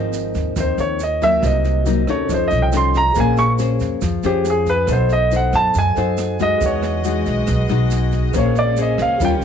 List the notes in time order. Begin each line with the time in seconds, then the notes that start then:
Already playing: G#1 G#2 F3 C4 D#4 F4 A#4 C5 D#5
0.13 snare, shaker
0.35 D#2, kick, snare, shaker
0.56 D#2 D#3 F3 C4 D#4, kick, cross-stick, snare, shaker
0.60 C5
0.78 D#2 C#5, snare, shaker
0.99 D#5, snare, shaker
1.21 F#3 A#3 D#4 E5, kick, snare, shaker
1.40 C2 C3 F#4 A#4 C5, kick, cross-stick, snare, shaker
1.46 D#5
1.64 snare, shaker
1.86 F#3 A#3 D#4, snare, shaker
2.07 D#2 C#4 D#4 A4 C#5, kick, cross-stick, snare, shaker
2.26 F2 A4 C5, kick, snare, shaker
2.30 F3 C#5 D#5
2.34 C5
2.48 C2 D#5, snare, shaker
2.62 G5
2.72 C#4 D#4 A4, cross-stick, snare, shaker
2.77 C6
2.94 A#5, kick, snare, shaker
3.12 A#1 G#4 C5, kick, snare, shaker
3.17 A#3 C#4 G#4 C5 F5 G#5
3.37 C#6, cross-stick, snare, shaker
3.59 C#4 G#4 C5, snare, shaker
3.80 F2, kick, snare, shaker
4.02 F2 F3, kick, cross-stick, snare, shaker
4.23 F2 C#4 G4 G#4 C5, snare, shaker
4.44 G#4 C5 G#5, snare, shaker
4.50 G#4
4.66 B4, kick, snare, shaker
4.86 B1 B3 D#4 A4 C5, kick, cross-stick, snare, shaker
4.90 C5 D#5 F#5
5.09 D#5, snare, shaker
5.31 D#4 A4 C5, snare, shaker
5.36 F#5
5.53 F#2 A5, kick, cross-stick, snare, shaker
5.74 F#2 F#3, kick, snare, shaker
5.79 G#5
5.95 F#2 D#4 A4 C5 D#5 F#5, snare, shaker
6.18 cross-stick, snare, shaker
6.39 G#3 D#4 F#4 D#5, kick, snare, shaker
6.58 E2 E3 G#3 F#4 G#4 B4 D#5, kick, snare, shaker
6.64 C#5 F#5
6.82 cross-stick, snare, shaker
7.04 G#3 D#4 F#4, snare, shaker
7.26 B1, kick, snare, shaker
7.47 B1 B2, kick, cross-stick, snare, shaker
7.69 B1 G#3 D#4 F#4, snare, shaker
7.91 snare, shaker
8.12 kick, snare, shaker
8.32 A#1 A#3 C#4 G#4 C5, kick, cross-stick, snare, shaker
8.38 C#5 F5
8.55 D5, snare, shaker
8.77 C#4 G#4 C5, snare, shaker
8.82 D#5
8.98 C#2 F5, kick, cross-stick, snare, shaker
9.18 D#2 D#3 G3 C#4 F4 G4 A#4, kick, snare, shaker
9.22 C#5 F5 G5